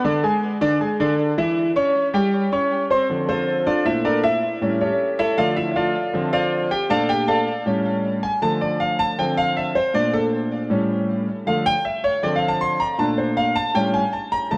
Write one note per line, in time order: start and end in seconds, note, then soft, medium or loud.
0.04 0.20 D3 medium
0.04 0.20 D4 medium
0.04 0.20 D5 medium
0.23 0.55 G#3 medium
0.23 0.55 G#4 medium
0.23 0.55 G#5 medium
0.61 0.77 D3 medium
0.61 0.77 D4 loud
0.61 0.77 D5 medium
0.80 0.96 G#3 medium
0.80 0.96 G#4 medium
0.80 0.96 G#5 medium
1.00 1.31 D3 medium
1.00 1.31 D4 medium
1.00 1.31 D5 medium
1.38 1.69 E3 medium
1.38 1.69 E4 medium
1.38 1.69 E5 medium
1.76 2.07 C#4 medium
1.76 2.07 C#5 medium
1.76 2.07 C#6 medium
2.14 2.45 G3 medium
2.14 2.45 G4 medium
2.14 2.45 G5 medium
2.52 2.83 C#4 medium
2.52 2.83 C#5 medium
2.52 2.84 C#6 medium
2.90 3.06 C4 medium
2.90 3.06 C5 medium
2.90 3.06 C6 medium
3.09 3.63 D3 medium
3.09 3.64 F3 medium
3.09 3.27 C4 medium
3.29 3.64 C4 medium
3.29 3.64 F4 medium
3.29 3.64 A4 medium
3.29 3.64 C5 medium
3.67 3.85 D4 medium
3.67 3.85 F4 medium
3.67 3.85 A4 medium
3.67 3.85 D5 medium
3.85 4.39 A#2 medium
3.85 4.40 A3 medium
3.85 4.04 D4 medium
3.85 4.04 E4 medium
3.85 4.04 E5 medium
4.05 4.23 D4 medium
4.05 4.23 A4 medium
4.05 4.23 A#4 medium
4.05 4.23 D5 medium
4.24 4.77 E4 medium
4.24 4.77 E5 medium
4.61 4.87 A2 medium
4.61 4.87 G3 medium
4.61 4.80 C#4 medium
4.81 5.16 C#4 medium
4.81 5.16 G4 medium
4.81 5.16 A4 medium
4.81 5.16 C#5 medium
5.19 5.37 E4 medium
5.19 5.37 A4 medium
5.19 5.37 C#5 medium
5.19 5.37 E5 medium
5.37 5.92 D3 medium
5.37 5.92 F3 medium
5.37 5.92 A3 medium
5.37 5.56 F4 medium
5.37 5.56 A4 medium
5.37 5.56 D5 medium
5.37 5.56 F5 medium
5.56 5.75 E4 medium
5.56 5.70 E5 medium
5.71 5.74 E5 medium
5.76 6.29 F4 medium
5.76 6.29 A4 medium
5.76 6.29 D5 medium
5.76 6.29 F5 medium
6.13 6.68 D3 medium
6.13 6.68 F3 medium
6.13 6.68 C4 medium
6.33 6.68 F4 medium
6.33 6.68 C5 medium
6.33 6.68 D5 medium
6.33 6.68 F5 medium
6.71 6.90 G4 medium
6.71 6.89 G5 medium
6.89 7.44 A#2 medium
6.89 7.44 A3 medium
6.89 7.45 D4 medium
6.89 7.09 A4 medium
6.89 7.09 D5 medium
6.89 7.09 F5 medium
6.89 7.08 A5 loud
7.09 7.28 G4 medium
7.09 7.27 G5 loud
7.28 7.81 A4 medium
7.28 7.63 D5 medium
7.28 7.63 F5 medium
7.28 7.81 A5 medium
7.65 8.20 A2 medium
7.65 8.20 G3 medium
7.65 8.21 C#4 medium
8.23 8.42 G#5 medium
8.42 9.14 D3 medium
8.42 9.15 F3 medium
8.42 9.15 A3 medium
8.42 8.61 A5 medium
8.61 8.80 D5 medium
8.80 8.99 F5 medium
8.99 9.18 A5 loud
9.18 9.73 D3 medium
9.18 9.73 F3 medium
9.18 9.73 C4 medium
9.18 9.37 G5 medium
9.37 9.56 F5 medium
9.57 9.75 E5 medium
9.75 9.94 C5 medium
9.94 10.66 A#2 medium
9.94 10.67 A3 soft
9.94 10.67 D4 medium
9.94 10.13 D5 medium
10.14 10.25 A4 medium
10.70 11.24 A2 medium
10.70 11.25 G3 medium
10.70 11.25 C#4 medium
11.46 11.72 D3 medium
11.46 11.72 F3 medium
11.46 11.73 A3 medium
11.46 11.65 F5 medium
11.66 11.84 G5 loud
11.85 12.03 E5 medium
12.04 12.22 C#5 medium
12.23 12.77 D3 medium
12.23 12.77 F3 medium
12.23 12.78 C4 medium
12.23 12.35 D5 medium
12.36 12.48 F5 medium
12.48 12.61 A5 medium
12.61 12.79 C6 loud
12.80 12.98 A#5 medium
12.98 13.53 A#2 medium
12.98 13.53 A3 medium
12.98 13.54 D4 medium
12.98 13.17 A5 medium
13.18 13.36 C5 medium
13.37 13.55 F5 medium
13.56 13.74 A5 loud
13.74 14.00 A2 medium
13.74 14.00 G3 medium
13.74 14.01 C#4 medium
13.74 13.93 G5 medium
13.94 14.12 G#5 medium
14.13 14.31 A5 medium
14.32 14.50 A#5 loud
14.51 14.57 D3 medium
14.51 14.57 F3 medium
14.51 14.57 A3 medium
14.51 14.57 A5 medium